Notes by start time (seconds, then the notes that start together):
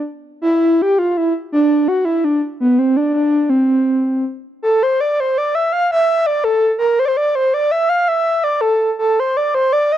0.42 E4
0.82 G4
0.98 F4
1.11 F4
1.17 E4
1.52 D4
1.88 F#4
2.05 E4
2.24 D4
2.60 B3
2.78 C4
2.96 D4
3.13 D4
3.49 C4
4.62 A4
4.83 C5
5.00 D5
5.20 C5
5.38 D5
5.55 E5
5.72 F5
5.91 E5
6.26 D5
6.44 A4
6.79 A#4
6.99 C5
7.05 C5 D5
7.17 D5
7.35 C5
7.54 D5
7.71 E5
7.89 F5
8.08 E5
8.44 D5
8.61 A4
8.99 A4
9.19 C5
9.37 D5
9.55 C5
9.72 D5
9.92 D#5